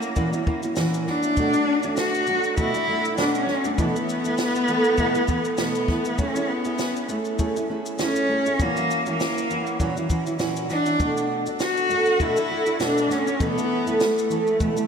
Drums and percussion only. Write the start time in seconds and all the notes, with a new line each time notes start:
0.02 shaker
0.16 kick, shaker
0.33 shaker
0.47 kick
0.63 shaker
0.76 snare, shaker
0.94 shaker
1.07 snare
1.23 shaker
1.37 kick, shaker
1.53 shaker
1.83 shaker
1.97 snare, shaker
2.14 shaker
2.27 shaker
2.44 shaker
2.57 kick, shaker
2.74 shaker
3.05 shaker
3.18 snare, shaker
3.35 shaker
3.48 snare
3.64 shaker
3.78 kick, shaker
3.96 shaker
4.09 shaker
4.25 shaker
4.38 snare, shaker
4.55 shaker
4.68 shaker
4.84 shaker
4.97 kick, shaker
5.15 shaker
5.28 kick, shaker
5.45 shaker
5.57 snare, shaker
5.75 shaker
5.88 kick, snare
6.05 shaker
6.18 kick, shaker
6.36 shaker
6.65 shaker
6.78 snare, shaker
6.96 shaker
7.09 shaker
7.25 shaker
7.39 kick, shaker
7.56 shaker
7.86 shaker
7.99 snare, shaker
8.16 shaker
8.46 shaker
8.60 kick, shaker
8.77 shaker
8.91 shaker
9.06 shaker
9.20 snare, shaker
9.38 shaker
9.50 shaker
9.67 shaker
9.80 kick, shaker
9.97 shaker
10.10 kick, shaker
10.26 shaker
10.39 snare, shaker
10.56 shaker
10.70 snare, shaker
10.86 shaker
11.00 kick, shaker
11.17 shaker
11.46 shaker
11.60 snare, shaker
11.77 shaker
11.90 shaker
12.06 shaker
12.20 kick, shaker
12.37 shaker
12.66 shaker
12.80 snare, shaker
12.98 shaker
13.11 snare, shaker
13.27 shaker
13.40 kick, shaker
13.58 shaker
13.87 shaker
14.00 snare, shaker
14.18 shaker
14.31 shaker
14.47 shaker
14.60 kick, shaker
14.77 shaker